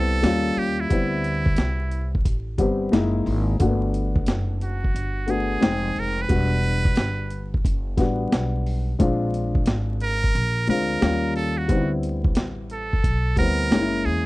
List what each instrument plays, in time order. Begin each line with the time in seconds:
Already playing: upright bass C2, upright piano G3 B3 C4 E4, muted trumpet A4
0.22 upright bass D#2, upright piano G3 A#3 C#4 F4, snare, closed hi-hat
0.57 upright bass D#2, muted trumpet G4, open hi-hat
0.80 muted trumpet E4
0.89 upright bass D2, upright piano G3 B3 C4 E4, kick, closed hi-hat
1.24 closed hi-hat
1.46 kick
1.56 upright bass C2, snare, closed hi-hat
1.92 closed hi-hat
2.15 kick
2.25 upright bass A1, kick, closed hi-hat
2.58 upright bass G1, upright piano G3 B3 C4 G4, kick, closed hi-hat
2.92 upright bass F#1, upright piano G#3 A#3 D#4 E4, snare, closed hi-hat
3.26 upright bass G#1, open hi-hat
3.59 upright bass G1, upright piano A3 A#3 D4 F#4, kick, closed hi-hat
3.66 upright piano B3
3.94 closed hi-hat
4.16 kick
4.26 upright bass F#1, snare, closed hi-hat
4.61 muted trumpet F#4, closed hi-hat
4.84 kick
4.94 upright bass G1, closed hi-hat
5.27 upright piano A3 B3 D4 F#4, muted trumpet G#4, closed hi-hat
5.60 upright bass F1, upright piano G#3 C4 D#4 G5, snare, closed hi-hat
5.96 upright bass F1, muted trumpet A#4, open hi-hat
6.21 muted trumpet B4
6.28 upright bass E1, upright piano G3 B3 D4 F#4, kick, closed hi-hat
6.63 closed hi-hat
6.85 kick
6.96 upright bass G1, snare, closed hi-hat
7.31 closed hi-hat
7.54 kick
7.65 upright bass F#1, kick, closed hi-hat
7.97 upright bass A1, upright piano G3 B3 D4 F#4, kick, snare, closed hi-hat
8.32 upright bass B1, snare, closed hi-hat
8.67 open hi-hat
8.99 upright bass A#1, upright piano G#3 C4 D4 F4, kick, closed hi-hat
9.34 closed hi-hat
9.55 kick
9.66 upright bass G#1, snare, closed hi-hat
10.00 muted trumpet A#4, closed hi-hat
10.24 kick
10.35 upright bass A#1, closed hi-hat
10.67 upright bass D2, upright piano G#3 C4 D4 F4, muted trumpet A#4, closed hi-hat
11.01 upright bass D#2, upright piano G3 A#3 C#4 F4, snare, closed hi-hat
11.36 muted trumpet A4, open hi-hat
11.58 muted trumpet F#4
11.68 upright bass D2, upright piano G3 B3 C4 D#4, kick, closed hi-hat
11.77 upright piano E4
12.03 closed hi-hat
12.24 kick
12.35 upright bass A1, snare, closed hi-hat
12.70 muted trumpet A4, closed hi-hat
12.93 kick
13.04 upright bass B1, kick, closed hi-hat
13.36 upright bass D2, upright piano G3 B3 C4 E4, muted trumpet A#4, kick, closed hi-hat
13.71 upright bass F#1, upright piano G#3 A#3 C#4 D#4, snare, closed hi-hat
13.79 upright piano E4
14.05 upright bass E2, muted trumpet G#4, open hi-hat